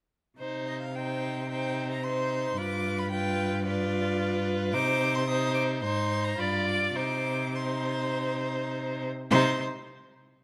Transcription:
0.39 C3 D#4 C5
0.67 D#5
0.80 F5
0.95 D#4 C5 G5
1.49 D#4 C5 G5
1.92 A#5
2.03 D#4 C5 C6
2.58 G2 F4 B4 D6
2.99 B5
3.10 F4 B4 G5
3.65 F4 B4 D5
4.73 C3 D#4 C5 D6
5.15 C6
5.27 D#4 C5 D#6
5.54 D6
5.83 G#2 D#4 C5 C6
6.24 A#5
6.38 G2 F4 D5 B5
6.67 D6
6.96 C3 D#4 C5 D6
7.54 D#4 C5 C6
9.31 C3 D#4 C5 C6

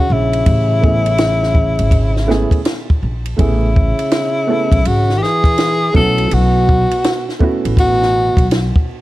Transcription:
Already playing: C#3 F#4
0.10 A#1 C#3 E4
0.33 ride
0.46 A1, kick, ride
0.81 A3 B3 C#4 E4 G#4, kick
1.06 ride
1.18 snare, hi-hat pedal, ride
1.43 snare
1.55 kick
1.79 G#1, ride
1.91 kick, ride
2.16 snare
2.27 A3 B3 C#4 E4 G#4, snare
2.51 kick, ride
2.65 snare, hi-hat pedal, ride
2.90 kick
3.03 A#1
3.25 ride
3.36 A1 C#3 A3 B3 C#4 E4 G#4, kick, ride
3.41 E4
3.76 kick
3.99 ride
4.11 snare, hi-hat pedal, ride
4.46 A3 B3 C#4 E4 A4
4.72 B1, kick, ride
4.84 G#1 C#3 F#4, ride
5.09 snare
5.16 D#3 G4
5.20 E3 G#4, snare
5.44 kick, ride
5.58 snare, hi-hat pedal, ride
5.93 B1 F#3 A3 B3 C#4 E4 F#4 A4, kick
6.18 ride
6.30 B1 B2 F#4, ride
6.69 kick
6.91 ride
7.04 snare, hi-hat pedal, ride
7.29 snare
7.39 A3 B3 C#4 E4 F#4, kick
7.65 A1, ride
7.77 B2 F#4, kick, ride
8.02 snare
8.37 B1, kick, ride
8.51 snare, hi-hat pedal, ride
8.76 kick

